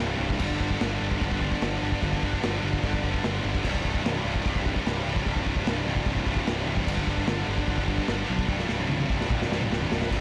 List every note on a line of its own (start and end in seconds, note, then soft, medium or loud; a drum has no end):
0.00 0.15 C1 medium
0.00 0.08 C2 medium
0.00 0.08 G2 medium
0.08 0.16 C2 medium
0.08 0.15 G2 medium
0.16 0.24 C2 medium
0.16 0.22 G2 medium
0.20 0.35 C1 loud
0.20 0.30 G2 medium
0.25 0.32 C2 medium
0.30 0.39 C2 medium
0.30 0.40 G2 medium
0.30 kick medium
0.39 0.56 G1 loud
0.39 0.46 G2 medium
0.39 0.48 D3 loud
0.39 kick loud
0.39 china medium
0.39 crash loud
0.47 0.54 G2 medium
0.47 0.56 D3 medium
0.47 kick medium
0.54 0.62 G2 medium
0.54 0.63 D3 medium
0.60 0.76 G1 medium
0.60 0.70 G2 medium
0.60 0.71 D3 medium
0.60 kick medium
0.70 0.77 G2 medium
0.70 0.79 D3 medium
0.70 kick medium
0.77 0.85 G2 medium
0.77 0.87 D3 medium
0.77 snare loud
0.77 china medium
0.82 0.97 G1 medium
0.82 0.92 G2 medium
0.87 0.94 D3 medium
0.93 1.00 G2 medium
0.93 1.02 D3 medium
1.01 1.17 G1 medium
1.01 1.08 G2 medium
1.01 1.09 D3 medium
1.08 1.16 G2 medium
1.08 1.17 D3 medium
1.08 kick medium
1.16 1.23 G2 medium
1.16 1.25 D3 medium
1.21 1.52 G1 loud
1.21 1.30 G2 medium
1.21 kick loud
1.21 china medium
1.26 1.32 D3 medium
1.31 1.38 G2 medium
1.31 1.40 D3 medium
1.31 kick medium
1.39 1.47 G2 medium
1.39 1.48 D3 medium
1.39 kick medium
1.47 1.55 G2 medium
1.47 1.54 D3 medium
1.52 1.61 G2 medium
1.52 1.62 D3 medium
1.52 kick medium
1.62 1.77 G1 medium
1.62 1.69 G2 medium
1.62 1.70 D3 medium
1.62 snare loud
1.62 china medium
1.70 1.77 G2 medium
1.70 1.78 D3 medium
1.77 1.85 G2 medium
1.77 1.86 D3 medium
1.82 1.97 G1 medium
1.82 1.93 G2 medium
1.82 1.93 D3 medium
1.92 2.01 G2 medium
1.92 2.01 D3 medium
1.92 kick medium
2.02 2.18 G1 loud
2.02 2.09 G2 medium
2.02 2.10 D3 medium
2.02 kick loud
2.02 china medium
2.09 2.17 G2 medium
2.09 2.17 D3 medium
2.09 kick medium
2.17 2.25 G2 medium
2.17 2.24 D3 medium
2.23 2.38 G1 loud
2.23 2.33 G2 medium
2.23 2.32 D3 medium
2.23 kick medium
2.33 2.40 G2 medium
2.33 2.40 D3 medium
2.33 kick medium
2.40 2.48 G2 medium
2.40 2.48 D3 medium
2.40 snare loud
2.40 china medium
2.45 2.59 G1 medium
2.45 2.56 G2 medium
2.49 2.56 D3 medium
2.56 2.63 G2 medium
2.56 2.64 D3 medium
2.63 2.78 G1 medium
2.63 2.70 G2 medium
2.63 2.72 D3 medium
2.70 2.78 G2 medium
2.70 2.79 D3 medium
2.70 kick medium
2.79 2.86 G2 medium
2.79 2.86 D3 medium
2.84 2.99 G1 loud
2.84 2.94 G2 medium
2.84 2.94 D3 medium
2.84 kick loud
2.84 china medium
2.94 3.02 G2 medium
2.94 3.01 D3 medium
2.94 kick medium
3.02 3.19 G1 medium
3.02 3.10 G2 medium
3.02 3.09 D3 medium
3.02 kick medium
3.10 3.17 G2 medium
3.10 3.18 D3 medium
3.10 kick medium
3.17 3.25 G2 medium
3.17 3.26 D3 medium
3.24 3.39 G1 medium
3.24 3.33 G2 medium
3.24 3.32 D3 medium
3.24 snare loud
3.24 china medium
3.33 3.40 G2 medium
3.33 3.41 D3 medium
3.41 3.48 G2 medium
3.41 3.48 D3 medium
3.45 3.60 G1 loud
3.45 3.56 G2 medium
3.45 3.56 D3 medium
3.55 3.64 G2 medium
3.55 3.65 D3 medium
3.55 kick loud
3.64 3.80 C1 loud
3.64 3.72 C2 medium
3.64 3.73 G2 loud
3.64 kick loud
3.64 crash loud
3.64 china medium
3.72 3.79 C2 medium
3.72 3.81 G2 medium
3.72 kick medium
3.80 3.87 C2 medium
3.80 3.88 G2 medium
3.85 4.00 C1 medium
3.85 3.94 C2 medium
3.85 3.96 G2 medium
3.85 kick medium
3.95 4.02 C2 medium
3.95 4.04 G2 medium
3.95 kick medium
4.03 4.20 C1 loud
4.03 4.09 C2 medium
4.03 4.12 G2 medium
4.03 snare loud
4.03 china medium
4.10 4.17 C2 medium
4.10 4.18 G2 loud
4.17 4.25 C2 medium
4.17 4.26 G2 medium
4.25 4.40 C1 medium
4.25 4.33 C2 medium
4.25 4.34 G2 loud
4.33 4.41 C2 medium
4.33 4.41 G2 medium
4.33 kick medium
4.41 4.48 C2 medium
4.41 4.49 G2 medium
4.46 4.76 C1 loud
4.46 4.56 C2 medium
4.46 4.57 G2 medium
4.46 kick loud
4.46 china medium
4.56 4.63 C2 medium
4.56 4.64 G2 medium
4.56 kick loud
4.64 4.71 C2 medium
4.64 4.71 G2 medium
4.64 kick medium
4.71 4.78 C2 medium
4.71 4.79 G2 medium
4.76 4.86 C2 medium
4.76 kick medium
4.80 4.86 G2 medium
4.86 5.01 C1 medium
4.86 4.94 C2 medium
4.86 4.94 G2 medium
4.86 snare loud
4.86 china medium
4.94 5.01 C2 medium
4.94 5.02 G2 medium
5.01 5.09 C2 medium
5.01 5.11 G2 medium
5.06 5.21 C1 loud
5.06 5.17 C2 medium
5.11 5.18 G2 medium
5.16 5.25 C2 medium
5.16 5.26 G2 medium
5.16 kick medium
5.26 5.42 C1 medium
5.26 5.33 C2 medium
5.26 5.34 G2 medium
5.26 kick loud
5.26 china medium
5.33 5.41 C2 medium
5.33 5.42 G2 medium
5.33 kick medium
5.41 5.49 C2 medium
5.41 5.49 G2 medium
5.46 5.62 C1 loud
5.46 5.56 C2 medium
5.46 5.56 G2 medium
5.46 kick medium
5.56 5.63 C2 medium
5.56 5.64 G2 medium
5.56 kick medium
5.64 5.82 C1 loud
5.64 5.71 C2 medium
5.64 5.72 G2 medium
5.64 snare loud
5.64 china medium
5.71 5.79 C2 medium
5.71 5.79 G2 medium
5.79 5.86 C2 medium
5.79 5.87 G2 medium
5.86 6.02 C1 medium
5.86 5.95 C2 medium
5.86 5.93 G2 medium
5.94 6.02 C2 medium
5.94 6.01 G2 medium
5.94 kick medium
6.02 6.10 C2 medium
6.02 6.09 G2 medium
6.02 china medium
6.06 6.22 C1 medium
6.06 6.16 G2 medium
6.06 kick loud
6.11 6.19 C2 medium
6.16 6.25 C2 medium
6.16 6.24 G2 medium
6.16 kick medium
6.25 6.42 C1 loud
6.25 6.33 C2 medium
6.25 6.30 G2 medium
6.25 kick medium
6.30 6.41 C2 medium
6.30 6.38 G2 medium
6.37 6.47 G2 medium
6.37 kick loud
6.42 6.49 C2 medium
6.47 6.62 C1 medium
6.47 6.56 C2 medium
6.47 6.54 G2 medium
6.47 snare loud
6.47 china medium
6.54 6.63 C2 medium
6.54 6.62 G2 medium
6.63 6.82 C1 loud
6.63 6.72 C2 medium
6.63 6.69 G2 medium
6.70 6.79 C2 medium
6.70 6.77 G2 medium
6.77 6.86 C2 medium
6.77 6.85 G2 medium
6.77 kick medium
6.86 7.03 G1 loud
6.86 6.94 G2 medium
6.86 6.94 D3 loud
6.86 kick loud
6.86 china medium
6.86 crash loud
6.94 7.01 G2 medium
6.94 7.02 D3 medium
6.94 kick medium
7.01 7.08 G2 medium
7.01 7.09 D3 medium
7.07 7.23 G1 medium
7.07 7.16 G2 medium
7.07 7.17 D3 medium
7.07 kick medium
7.17 7.24 G2 medium
7.17 7.25 D3 medium
7.17 kick medium
7.25 7.43 G1 medium
7.25 7.32 G2 medium
7.25 7.33 D3 medium
7.25 snare loud
7.25 china medium
7.32 7.40 G2 medium
7.32 7.41 D3 medium
7.40 7.47 G2 medium
7.40 7.49 D3 medium
7.48 7.64 G1 medium
7.48 7.56 G2 medium
7.48 7.56 D3 medium
7.56 7.63 G2 medium
7.56 7.65 D3 medium
7.56 kick medium
7.63 7.71 G2 medium
7.63 7.71 D3 medium
7.68 7.99 G1 loud
7.68 7.78 G2 medium
7.68 7.79 D3 medium
7.68 kick loud
7.68 china medium
7.78 7.86 G2 medium
7.78 7.87 D3 medium
7.78 kick medium
7.87 7.93 G2 medium
7.87 7.94 D3 medium
7.87 kick medium
7.94 8.01 G2 medium
7.94 8.02 D3 medium
7.98 8.09 G2 medium
7.98 kick medium
8.03 8.10 D3 medium
8.08 8.24 G1 medium
8.08 8.17 G2 medium
8.08 8.17 D3 medium
8.08 snare loud
8.08 china medium
8.17 8.24 G2 medium
8.17 8.25 D3 medium
8.25 8.32 G2 medium
8.25 8.33 D3 medium
8.30 8.45 B1 loud
8.30 8.40 G2 medium
8.30 8.41 D3 medium
8.39 8.48 G2 medium
8.39 8.49 D3 medium
8.39 kick medium
8.48 8.64 C1 medium
8.48 8.55 C2 medium
8.48 8.57 G2 loud
8.48 kick loud
8.48 high tom medium
8.56 8.62 C2 medium
8.56 8.64 G2 medium
8.56 snare medium
8.63 8.70 C2 medium
8.63 8.72 G2 medium
8.69 8.85 C1 medium
8.69 8.78 C2 medium
8.69 8.80 G2 medium
8.69 snare medium
8.79 8.86 C2 medium
8.79 8.86 G2 medium
8.79 high tom medium
8.86 9.05 C1 medium
8.86 8.94 C2 medium
8.86 8.94 G2 medium
8.86 mid tom medium
8.94 9.02 C2 medium
8.94 9.03 G2 medium
9.00 9.09 C2 medium
9.00 9.11 G2 medium
9.00 mid tom medium
9.10 9.26 C1 medium
9.10 9.17 C2 medium
9.10 9.18 G2 medium
9.10 kick medium
9.17 9.25 C2 medium
9.17 9.25 G2 medium
9.17 snare medium
9.25 9.32 C2 medium
9.25 9.33 G2 medium
9.30 9.46 C1 medium
9.30 9.39 C2 medium
9.30 9.42 G2 medium
9.30 kick loud
9.30 mid tom loud
9.39 9.47 C2 medium
9.39 9.48 G2 medium
9.39 snare medium
9.48 9.65 C1 medium
9.48 9.55 C2 medium
9.48 9.55 G2 medium
9.52 9.63 C2 medium
9.52 9.63 G2 medium
9.52 snare loud
9.62 9.71 C2 medium
9.62 9.72 G2 medium
9.62 mid tom medium
9.70 9.86 C1 loud
9.70 9.77 C2 medium
9.70 9.79 G2 medium
9.70 snare loud
9.78 9.85 C2 medium
9.78 9.87 G2 medium
9.78 floor tom loud
9.86 9.94 C2 medium
9.86 9.93 G2 medium
9.91 10.06 C1 medium
9.91 10.00 C2 medium
9.91 10.01 G2 medium
9.91 snare loud
10.00 10.08 C2 medium
10.00 10.10 G2 medium
10.00 snare loud
10.10 10.21 C1 medium
10.10 10.20 C2 medium
10.10 10.20 G2 loud
10.10 kick loud
10.10 crash loud
10.10 china medium